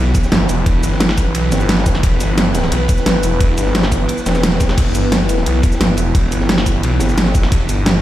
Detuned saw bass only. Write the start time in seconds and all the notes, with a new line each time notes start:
Already playing: B1
0.32 G1
0.49 E1
0.83 G1
1.35 B1
1.52 G1
2.03 E1
2.21 G1
2.72 B1
3.06 G1
3.23 E1
3.58 G1
4.26 E1
4.78 E1
4.95 G1
5.46 B1
5.80 G1
5.98 E1
6.32 G1
6.83 B1
7.01 G1
7.52 E1
7.69 G1